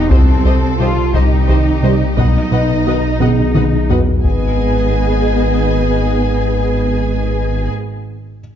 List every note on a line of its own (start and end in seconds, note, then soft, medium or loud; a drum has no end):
0.00 0.12 E1 medium
0.00 1.45 G4 soft
0.00 1.45 F#6 soft
0.10 0.31 C2 medium
0.10 2.19 C2 medium
0.10 1.02 C2 medium
0.10 0.31 C3 medium
0.10 0.79 C4 medium
0.10 0.19 G4 soft
0.10 1.12 A4 medium
0.10 0.19 C5 soft
0.10 0.20 D#5 soft
0.10 taiko medium
0.45 0.66 C2 medium
0.45 0.66 C4 medium
0.45 0.53 G4 soft
0.45 0.53 C5 soft
0.45 0.54 D#5 soft
0.79 1.00 C3 medium
0.79 0.92 D#3 soft
0.79 1.01 G3 medium
0.79 0.92 G3 medium
0.79 1.13 F4 medium
0.79 0.87 G4 soft
0.79 0.92 G4 medium
0.79 0.92 C5 medium
0.79 0.88 C5 soft
0.79 0.89 D#5 soft
1.14 1.34 C2 medium
1.14 2.05 C2 medium
1.14 1.35 C3 medium
1.14 2.16 D#4 medium
1.14 2.15 G4 medium
1.14 1.22 G4 soft
1.14 1.22 C5 soft
1.14 1.23 D#5 soft
1.14 taiko medium
1.48 1.69 C2 medium
1.48 1.69 D#3 medium
1.48 1.56 G4 soft
1.48 1.56 C5 soft
1.48 1.58 D#5 soft
1.83 2.04 C3 medium
1.83 1.95 D#3 soft
1.83 2.04 G3 medium
1.83 1.95 G3 soft
1.83 1.95 G4 soft
1.83 1.91 G4 soft
1.83 1.91 C5 soft
1.83 1.95 C5 soft
1.83 1.93 D#5 soft
2.17 4.24 B1 medium
2.17 3.09 B1 medium
2.17 2.38 B2 medium
2.17 2.38 B3 medium
2.17 3.86 D#4 medium
2.17 2.25 B4 soft
2.17 2.25 D#5 soft
2.17 3.73 D#5 medium
2.17 2.27 F#5 soft
2.17 taiko medium
2.52 2.73 B2 medium
2.52 2.60 B4 soft
2.52 2.73 B4 soft
2.52 2.60 D#5 soft
2.52 2.61 F#5 soft
2.86 2.99 D#3 soft
2.86 2.98 B3 soft
2.86 3.07 B3 soft
2.86 3.07 F#4 soft
2.86 2.99 F#4 soft
2.86 2.94 B4 soft
2.86 2.99 B4 soft
2.86 2.94 D#5 soft
2.86 2.95 F#5 soft
3.20 4.12 B1 soft
3.20 3.42 B2 medium
3.20 3.42 B3 medium
3.20 4.20 G#4 soft
3.20 3.29 B4 soft
3.20 3.29 D#5 soft
3.20 3.30 F#5 soft
3.20 taiko mid medium
3.55 3.76 B2 soft
3.55 3.76 D#4 soft
3.55 3.63 B4 soft
3.55 3.63 D#5 soft
3.55 3.64 F#5 soft
3.55 taiko mid medium
3.89 4.02 D#3 soft
3.89 4.01 B3 soft
3.89 4.11 B3 soft
3.89 4.11 F#4 medium
3.89 4.02 F#4 soft
3.89 3.97 B4 soft
3.89 4.02 B4 soft
3.89 3.97 D#5 soft
3.89 3.98 F#5 soft
3.89 taiko low medium
4.23 7.68 G#1 soft
4.23 7.69 G#1 medium
4.23 7.69 D#3 soft
4.23 7.68 B3 soft
4.23 7.69 B3 soft
4.23 7.70 B3 soft
4.23 7.69 G#4 soft
4.23 7.69 B4 soft
4.23 7.68 D#5 soft
4.23 7.69 G#5 soft
4.23 taiko soft